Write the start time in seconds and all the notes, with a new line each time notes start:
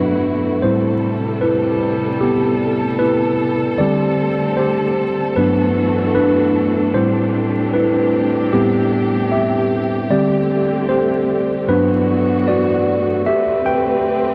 Already playing: G2 B2 F#3 A3 B3 D4 E4 F#4 B4
0.62 A2 C3 G3 C4 E4 A4 C5
1.41 E4 B4
2.21 B3 G4
2.99 E4 B4
3.78 D3 G3 A3 C4 G4 D5
4.57 G4 C5
5.36 G2 E3 F#3 B3 D4 F#4 B4
6.15 D4 B4
6.94 A2 C3 G3 C4 E4 G4 C5
7.74 E4 B4
8.53 A2 G3 B3 C4 G4
9.32 G4 E5
10.10 D3 G3 A3 C4 G4 D5
10.89 G4 C5
11.67 G2 E3 F#3 A3 B3 D4 F#4 B4
12.48 F#4 D5
13.26 C4 G4 B4 E5
13.66 B4 G5